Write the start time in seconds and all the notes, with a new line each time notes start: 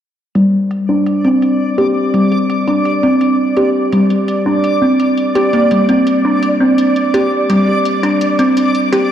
0.35 G3 D5, closed hi-hat
0.71 closed hi-hat
0.89 D4
1.06 closed hi-hat
1.24 C4, closed hi-hat
1.42 closed hi-hat
1.78 G4, closed hi-hat
2.14 G3, closed hi-hat
2.32 closed hi-hat
2.50 closed hi-hat
2.68 D4, closed hi-hat
2.85 closed hi-hat
3.03 C4, closed hi-hat
3.21 closed hi-hat
3.57 G4, closed hi-hat
3.92 G3, closed hi-hat
4.10 closed hi-hat
4.28 closed hi-hat
4.46 D4
4.64 closed hi-hat
4.82 C4
5.00 closed hi-hat
5.18 closed hi-hat
5.35 G4, closed hi-hat
5.53 A#3, closed hi-hat
5.71 G3, closed hi-hat
5.89 C4, closed hi-hat
6.07 closed hi-hat
6.25 D4
6.43 closed hi-hat
6.60 C4
6.78 closed hi-hat
6.96 closed hi-hat
7.14 G4, closed hi-hat
7.50 G3, closed hi-hat
7.85 closed hi-hat
8.03 D4, closed hi-hat
8.21 closed hi-hat
8.39 C4, closed hi-hat
8.57 closed hi-hat
8.75 closed hi-hat
8.93 G4, closed hi-hat